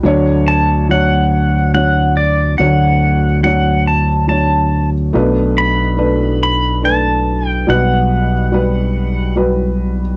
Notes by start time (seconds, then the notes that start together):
0.03 D2 D3 F#3 D4 C#5
0.48 A5
0.89 F#3 D4 C#5 F#5
1.74 F#3 D4 C#5 F#5
2.17 D5
2.58 D2 D3 F#3 D4 C#5 F#5
3.43 F#3 D4 C#5 F#5
3.87 A5
4.28 F#3 D4 C#5 A5
5.13 B1 B2 A3 D4 B4
5.58 B5
5.97 A3 D4 B4
6.43 B5
6.82 A3 D4 B4 A5
7.47 G5
7.67 B1 B2 G3 F#4 B4 F#5
8.52 G3 F#4 B4
9.35 G3 F#4 B4